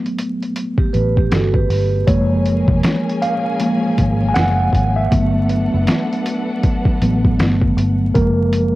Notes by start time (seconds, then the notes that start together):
Already playing: F#3 A3 B3
0.06 closed hi-hat
0.18 closed hi-hat
0.43 closed hi-hat
0.56 closed hi-hat
0.78 G4, kick
0.93 A1 G4 B4, closed hi-hat
1.17 G4, kick
1.31 G1 F#4 A4, snare, closed hi-hat
1.54 G4 B4, kick
1.70 G1, open hi-hat
2.07 F#1 F3 G#3 A#3 C#4 G#4 A#4 C#5 G#5, kick, closed hi-hat
2.46 closed hi-hat
2.68 F1, kick
2.83 snare, closed hi-hat
3.09 closed hi-hat
3.22 F5, closed hi-hat
3.60 F3 G#3 A#3, closed hi-hat
3.98 G#1, kick, closed hi-hat
4.29 G#5
4.34 F#1 F#5, snare, closed hi-hat
4.73 G#1, kick, closed hi-hat
4.96 E5
5.11 G1 F#3 A3 B3 D4 A4 B4 F#5, kick, closed hi-hat
5.49 closed hi-hat
5.74 F#1
5.87 snare, closed hi-hat
6.13 closed hi-hat
6.26 closed hi-hat
6.63 kick, closed hi-hat
6.85 kick
7.02 A1 F#3 A3 B3, closed hi-hat
7.25 kick
7.39 G1, snare, closed hi-hat
7.61 kick
7.76 G1, closed hi-hat
8.14 F#1 F3 G#3 A#3 A#4, kick, closed hi-hat
8.53 closed hi-hat